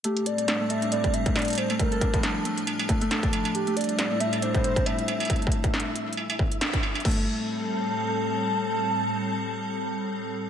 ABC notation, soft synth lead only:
X:1
M:4/4
L:1/8
Q:"Swing 16ths" 1/4=137
K:Am
V:1 name="Soft synth lead"
G d2 e d e d c | _B2 z6 | G d2 e c c e2 | z8 |
a8- | a8 |]